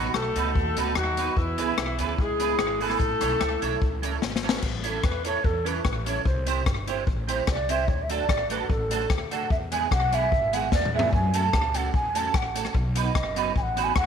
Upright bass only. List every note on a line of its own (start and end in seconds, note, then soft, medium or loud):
0.00 0.12 A1 loud
0.14 0.33 B1 medium
0.36 0.52 C#2 medium
0.55 0.74 D#2 loud
0.76 0.93 C#2 loud
0.96 1.31 D#2 medium
1.36 1.55 E2 loud
1.58 1.75 C#2 medium
1.77 1.96 B1 medium
1.99 2.15 D2 medium
2.18 2.53 C#2 medium
2.58 2.93 G#1 loud
2.99 3.18 A1 loud
3.22 3.38 B1 medium
3.41 3.59 C#2 medium
3.62 3.78 B1 medium
3.82 4.16 C#2 medium
4.22 4.56 G#1 medium
4.63 4.97 A1 loud
5.03 5.38 E2 medium
5.44 5.79 E2 loud
5.85 6.19 A1 loud
6.25 6.60 C2 loud
6.66 7.01 G1 medium
7.07 7.41 A1 loud
7.47 7.88 C2 loud
7.88 8.23 D2 loud
8.29 8.63 A1 medium
8.70 9.04 A1 loud
9.10 9.44 D2 medium
9.50 9.85 E2 loud
9.91 10.26 B1 loud
10.32 10.66 G#1 loud
10.72 11.07 E2 loud
11.13 11.47 F#2 loud
11.53 11.88 C#2 loud
11.94 12.28 E2 loud
12.34 12.69 A1 medium
12.74 13.09 B1 loud
13.15 13.49 F#1 loud
13.56 13.90 A1 loud
13.96 14.06 D#2 medium